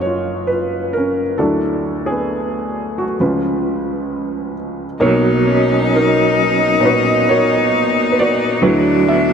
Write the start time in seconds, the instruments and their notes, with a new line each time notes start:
Already playing: felt piano F#1 F#2 F#3 C#4 D#4 F#4 A#4 B4 D#5 F5
0.00 felt piano C#5
0.06 felt piano F4
0.47 felt piano B4
0.52 felt piano F4
0.93 felt piano A#4
0.98 felt piano C#4
1.38 felt piano D2 D3 F#3 E4 A4 D5
1.42 felt piano D4
2.06 felt piano G#4
2.11 felt piano B3
2.98 felt piano A3 F#4
3.20 felt piano C#2 C#3 F3 C#4 F4 B4
3.25 felt piano G#3
5.00 felt piano B1 B2 A#3 D#4 C#5, clean electric guitar F#3, cello D#4
5.47 clean electric guitar C#4
5.95 felt piano C#4 D#4 A#4
6.80 felt piano A#2 D#4 C#5
6.85 felt piano D#4 F#4 B4
7.29 felt piano F#4 A#4 C#5
8.12 felt piano B4
8.19 felt piano F#4 B4 D5
8.62 felt piano D2 D3 F#3 E4 B4, clean electric guitar F#3, cello D4
9.08 clean electric guitar B3, felt piano E5